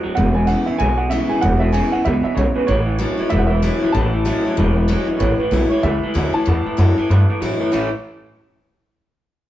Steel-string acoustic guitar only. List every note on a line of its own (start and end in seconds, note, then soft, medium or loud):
0.00 0.15 F#2 medium
0.17 0.77 E2 medium
0.47 0.66 E3 medium
0.47 0.67 G#3 medium
0.47 0.67 B3 medium
0.47 0.66 E4 medium
0.67 0.80 B3 soft
0.67 0.79 E4 medium
0.80 1.40 B2 medium
1.11 1.41 E3 medium
1.11 1.42 G#3 medium
1.11 1.42 B3 medium
1.11 1.42 E4 medium
1.42 2.03 E2 loud
1.72 1.92 E3 medium
1.72 1.92 G#3 medium
1.72 1.93 B3 medium
1.72 1.92 E4 medium
1.93 2.06 B3 soft
1.93 2.05 E4 medium
2.06 2.36 F#2 medium
2.38 2.67 G#2 medium
2.68 3.29 A2 medium
2.99 3.18 E3 medium
2.99 3.18 A3 loud
2.99 3.18 C#4 medium
2.99 3.16 E4 medium
3.18 3.31 C#4 soft
3.18 3.30 E4 medium
3.30 3.91 E2 medium
3.62 3.81 E3 medium
3.62 3.81 A3 medium
3.62 3.81 C#4 medium
3.62 3.80 E4 loud
3.81 3.94 C#4 soft
3.81 3.93 E4 medium
3.95 4.55 A2 loud
4.25 4.44 E3 medium
4.25 4.44 A3 medium
4.25 4.44 C#4 medium
4.25 4.44 E4 medium
4.45 4.58 C#4 soft
4.45 4.57 E4 medium
4.57 5.18 E2 medium
4.88 5.07 E3 medium
4.88 5.07 A3 medium
4.88 5.08 C#4 loud
4.88 5.06 E4 medium
5.08 5.20 C#4 medium
5.08 5.19 E4 medium
5.20 5.81 A2 medium
5.51 5.70 E3 medium
5.51 5.70 A3 medium
5.51 5.71 C#4 medium
5.51 5.69 E4 medium
5.70 5.83 C#4 soft
5.70 5.82 E4 medium
5.83 6.44 E2 medium
6.14 6.33 E3 medium
6.14 6.33 A3 medium
6.14 6.33 C#4 loud
6.14 6.32 E4 medium
6.33 6.46 C#4 soft
6.33 6.45 E4 medium
6.46 7.06 A2 medium
6.77 6.96 E3 medium
6.77 6.96 A3 medium
6.77 6.96 C#4 medium
6.77 6.96 E4 medium
6.97 7.09 E4 medium
7.42 7.72 E3 medium
7.42 7.72 A3 medium
7.42 7.72 C#4 medium
7.42 7.72 E4 loud
7.72 7.87 A2 medium
7.72 7.88 E3 medium
7.72 7.88 A3 medium
7.72 7.89 C#4 medium
7.72 7.89 E4 medium